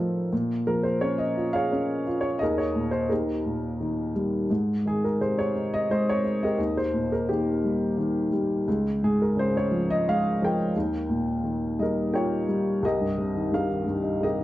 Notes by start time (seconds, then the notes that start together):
Already playing: A2 F3 A3 C4 D#4 A4 A#4 C5 D#5
0.33 A#2
0.67 F3 A#4
0.83 C5
1.01 C#4 C#5
1.18 D#5
1.37 F4
1.53 G#4 C#5 F5
1.72 C#4
2.07 F4
2.21 C#5
2.39 D#2 G#4 A#4 D#5
2.58 C#5
2.76 A#2
2.91 C5
3.10 D#2 D#4 G4 A#4
3.46 A#2
3.81 D#3
4.15 G3
4.50 G#2
4.85 D#3 G#4
5.04 A#4
5.21 C3 C5
5.39 C#5
5.55 D#4
5.74 D#5
5.90 G#3 C5
6.09 C#5
6.25 D#4
6.43 G4 A#4 D#5
6.58 D#2
6.77 C5
6.94 A#2
7.12 A#4
7.29 D#3 A#3 D#4 G4
7.64 G3
7.98 D#3
8.32 G3
8.68 C#2
9.03 G#2 G#4
9.22 A#4
9.37 C#3 C5
9.57 C#5
9.71 F3
9.90 D#5
10.07 G#3 F5
10.42 F3 A#4 G5
10.76 D#2
11.10 A#2
11.44 D#3
11.79 G3 A#4 D#5
12.13 A#3 F4 G4 C#5 G5
12.48 G3
12.83 C2 G4 A#4 D#5
13.00 G2
13.18 C3
13.35 D#3
13.51 G2 A#4 F5
13.69 D#3
13.86 G2
14.02 D#4
14.21 C3 G4 A#4 D#5
14.38 D#3